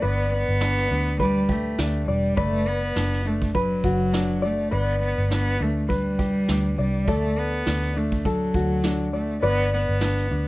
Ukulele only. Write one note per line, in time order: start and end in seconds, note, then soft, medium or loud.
0.00 0.61 D4 medium
0.00 1.20 B4 medium
0.00 0.02 D5 medium
0.00 1.49 D5 medium
0.62 0.90 D4 medium
0.91 1.78 D4 medium
1.20 2.08 B4 medium
1.49 2.37 G4 medium
1.78 2.95 D4 medium
2.08 2.37 D5 medium
2.37 3.55 B4 medium
2.37 3.54 D5 medium
2.96 3.25 D4 medium
3.25 4.13 D4 medium
3.55 4.42 B4 medium
3.84 4.71 F#4 medium
4.13 5.30 D4 medium
4.42 4.72 D5 medium
4.71 5.88 B4 medium
4.71 6.78 D5 medium
5.31 5.60 D4 medium
5.60 6.48 D4 medium
5.89 7.07 B4 medium
6.19 6.78 G4 medium
6.49 7.66 D4 medium
6.78 7.08 D5 medium
7.08 8.24 A4 medium
7.08 9.13 D5 medium
7.66 7.96 D4 medium
7.96 8.84 D4 medium
8.25 9.13 A4 medium
8.54 9.42 F#4 soft
8.84 10.01 D4 medium
9.13 9.43 D5 medium
9.42 10.48 B4 medium
9.42 10.48 D5 medium
10.01 10.31 D4 medium
10.31 10.48 D4 medium